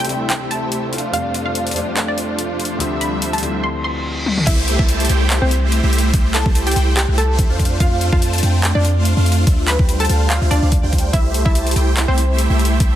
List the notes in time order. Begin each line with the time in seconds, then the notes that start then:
Already playing: C3 E3 G3 A3 D4 E4 G4 C5 E5
0.00 G5
0.05 C3 G3, closed hi-hat
0.09 A3 D4 E4, closed hi-hat
0.30 G5, clap, closed hi-hat
0.51 A5, closed hi-hat
0.72 closed hi-hat
0.92 F3 A3 D4 F4 C5 F5, closed hi-hat
0.98 closed hi-hat
1.12 F2 G3 A3 C4 D4 F5, closed hi-hat
1.34 closed hi-hat
1.46 F5
1.55 closed hi-hat
1.67 closed hi-hat
1.71 F2 G3, closed hi-hat
1.76 A3 C4 D4, closed hi-hat
1.97 clap, closed hi-hat
2.08 D5
2.18 closed hi-hat
2.39 closed hi-hat
2.60 closed hi-hat
2.65 closed hi-hat
2.78 D2 C3 F3 G3 A3 C4 D4 F4 C5 E5, closed hi-hat
2.82 E5
3.01 B5, closed hi-hat
3.22 closed hi-hat
3.33 A5, closed hi-hat
3.38 D2 F3, closed hi-hat
3.42 G3 A3 C4 E4, closed hi-hat
3.63 C6, reverse cymbal
3.84 C6
4.26 high tom
4.38 mid tom
4.47 C2 A3 E4 G4 C5 E5, kick, closed hi-hat, crash, downlifter
4.68 closed hi-hat
4.79 C2 A3 E4 G4 C5 E5 A5, kick
4.89 closed hi-hat
5.00 closed hi-hat
5.05 closed hi-hat
5.09 C2 A3 E4 G4 C5 G5, closed hi-hat
5.30 clap, closed hi-hat
5.41 C2 A3 C4 E4 G4 C5 E5
5.51 closed hi-hat
5.72 closed hi-hat
5.83 C2 A3 E4 G4 C5 E5
5.93 closed hi-hat
5.98 closed hi-hat
6.13 C2 G4, kick, closed hi-hat
6.34 A4 A5, clap, closed hi-hat
6.46 C2 A3 E4 G4 C5 A5, kick
6.55 closed hi-hat
6.67 G4 G5, closed hi-hat
6.71 closed hi-hat
6.76 C2 A3 E4 G4 C5 G5, closed hi-hat
6.97 G4 G5, clap, closed hi-hat
7.08 C2 A3 E4 G4 C5 E5
7.18 A4 A5, closed hi-hat
7.39 kick, closed hi-hat
7.50 F2 A3 D4 F4 C5 F5
7.59 kick, closed hi-hat
7.65 closed hi-hat
7.80 F2 A3 D4 F4 C5 F5, kick, closed hi-hat
8.01 closed hi-hat
8.12 F2 A3 D4 F4 C5 F5 A5, kick
8.22 closed hi-hat
8.33 closed hi-hat
8.38 closed hi-hat
8.43 F2 A3 D4 F4 C5 G5, closed hi-hat
8.64 clap, closed hi-hat
8.75 F2 A3 D4 F4 C5 D5 F5
8.85 closed hi-hat
9.05 closed hi-hat
9.17 F2 A3 D4 F4 C5 F5
9.26 closed hi-hat
9.32 closed hi-hat
9.47 D2 G3 D4 F4 C5 E5, kick, closed hi-hat
9.68 B4 B5, clap, closed hi-hat
9.79 D2 G3 D4 F4 C5 G5, kick
9.89 closed hi-hat
10.00 A4 A5, closed hi-hat
10.05 closed hi-hat
10.09 D2 G3 D4 F4 C5 F5, closed hi-hat
10.30 F4 F5, clap, closed hi-hat
10.42 D2 G3 D4 F4 C5 E5
10.51 D2 G3 D4 F4 C5 D5 F5, closed hi-hat
10.62 D2 G3 D4 F4 C5 F5
10.72 kick, closed hi-hat
10.83 D2 G3 D4 F4 C5 G5
10.93 kick, closed hi-hat
10.98 closed hi-hat
11.13 C2 A3 E4 G4 C5 E5, kick, closed hi-hat
11.34 closed hi-hat
11.45 C2 A3 E4 G4 E5, kick
11.55 closed hi-hat
11.67 closed hi-hat
11.71 closed hi-hat
11.76 C2 A3 E4 G4 C5 G5, closed hi-hat
11.97 clap, closed hi-hat
12.08 C2 A3 C4 E4 G4 C5 E5
12.18 closed hi-hat
12.38 closed hi-hat
12.50 C2 A3 E4 G4 C5 E5
12.59 closed hi-hat
12.65 closed hi-hat
12.80 C2, kick, closed hi-hat